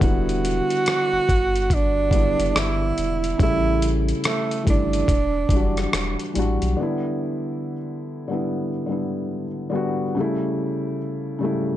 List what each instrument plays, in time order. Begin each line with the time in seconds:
0.00 sub bass E1, felt piano D3 G3 B3 E4, kick, closed hi-hat
0.04 tenor saxophone F#4
0.29 closed hi-hat
0.45 closed hi-hat
0.70 closed hi-hat
0.86 cross-stick, closed hi-hat
1.13 sub bass G1
1.29 sub bass G1, kick, closed hi-hat
1.56 closed hi-hat
1.70 kick, closed hi-hat
1.74 tenor saxophone D4
2.10 felt piano D3 G3 B3, kick, closed hi-hat
2.15 felt piano E4
2.39 sub bass F#1, closed hi-hat
2.56 sub bass G1, tenor saxophone E4, cross-stick, closed hi-hat
2.98 sub bass E1, closed hi-hat
3.24 closed hi-hat
3.38 sub bass A1, felt piano C#3 G3 A3, kick, closed hi-hat
3.43 tenor saxophone E4, felt piano E4
3.82 closed hi-hat
4.09 closed hi-hat
4.24 tenor saxophone A3, cross-stick, closed hi-hat
4.51 closed hi-hat
4.63 felt piano E3 G3 A3
4.67 sub bass G1, tenor saxophone D4, felt piano E4, kick, closed hi-hat
4.93 closed hi-hat
5.08 sub bass E1, kick, closed hi-hat
5.49 sub bass F#1, felt piano E3 G3, kick, closed hi-hat
5.54 felt piano D4 F#4
5.77 cross-stick, closed hi-hat
5.93 sub bass E1, cross-stick, closed hi-hat
6.19 closed hi-hat
6.33 sub bass A1, felt piano E3 G3 D4, closed hi-hat
6.39 felt piano F#4
6.62 sub bass B1, closed hi-hat
6.77 felt piano D3 G3 B3
6.82 felt piano E4
8.28 felt piano D3 G3 B3
8.33 felt piano E4
8.86 felt piano D3 G3 B3
8.92 felt piano E4
9.70 felt piano D3 G3 B3
9.75 felt piano F#4
10.15 felt piano C#3 G3 A3
10.20 felt piano E4
11.39 felt piano C#3 G3 A3
11.44 felt piano E4